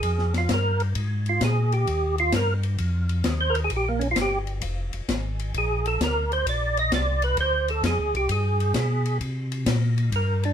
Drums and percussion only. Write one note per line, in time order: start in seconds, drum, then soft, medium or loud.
0.03 kick soft
0.03 ride medium
0.18 snare soft
0.34 snare soft
0.34 ride soft
0.49 kick soft
0.49 snare medium
0.49 hi-hat pedal medium
0.49 ride medium
0.80 ride soft
0.95 kick soft
0.95 ride medium
1.26 ride soft
1.41 kick soft
1.41 snare medium
1.41 hi-hat pedal medium
1.41 ride medium
1.72 ride soft
1.87 kick soft
1.87 ride medium
2.18 ride soft
2.32 kick soft
2.32 snare medium
2.32 hi-hat pedal soft
2.32 ride medium
2.63 ride soft
2.78 kick soft
2.78 ride medium
3.09 ride soft
3.24 kick soft
3.24 snare medium
3.24 hi-hat pedal soft
3.24 ride medium
3.55 ride soft
3.70 kick soft
3.70 ride medium
4.01 ride soft
4.16 kick soft
4.16 snare medium
4.16 hi-hat pedal medium
4.16 ride medium
4.47 ride soft
4.62 kick soft
4.62 ride medium
4.93 ride soft
5.08 kick soft
5.08 snare medium
5.08 hi-hat pedal medium
5.08 ride medium
5.39 ride soft
5.54 kick soft
5.54 ride medium
5.86 ride medium
6.00 kick soft
6.00 snare medium
6.00 hi-hat pedal medium
6.00 ride medium
6.32 ride soft
6.46 kick soft
6.46 ride medium
6.77 ride soft
6.92 kick soft
6.92 snare medium
6.92 hi-hat pedal medium
6.92 ride medium
7.22 ride soft
7.37 kick soft
7.37 ride medium
7.68 ride soft
7.83 kick soft
7.83 snare medium
7.83 hi-hat pedal medium
7.83 ride medium
8.15 ride soft
8.29 kick soft
8.29 ride medium
8.60 ride soft
8.74 kick soft
8.74 snare medium
8.74 hi-hat pedal medium
8.74 ride medium
9.06 ride soft
9.21 kick soft
9.21 ride medium
9.52 ride soft
9.66 kick soft
9.66 snare medium
9.66 hi-hat pedal medium
9.66 ride medium
9.98 ride soft
10.12 kick soft
10.12 ride medium
10.43 ride soft